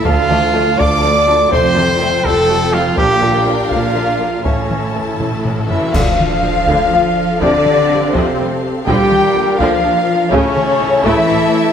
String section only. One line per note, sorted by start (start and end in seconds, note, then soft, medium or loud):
0.00 1.51 A3 medium
0.00 2.97 A4 medium
0.00 1.51 A5 medium
0.05 4.45 F4 medium
1.51 2.97 C4 medium
1.51 2.97 G5 loud
2.98 4.45 D4 loud
2.98 4.45 A#4 loud
2.98 4.45 F5 loud
4.43 5.94 E4 medium
4.43 5.92 A4 medium
4.43 5.94 A5 medium
5.93 7.37 D4 medium
5.93 7.37 F4 medium
5.93 8.83 A4 medium
5.93 10.28 F5 medium
7.41 8.87 C4 medium
7.41 8.87 G4 medium
8.86 10.32 D4 medium
8.86 10.32 F4 medium
8.86 10.32 A#4 medium
10.31 11.73 A3 loud
10.31 11.73 E4 loud
10.31 11.73 A4 loud
10.31 11.73 A5 loud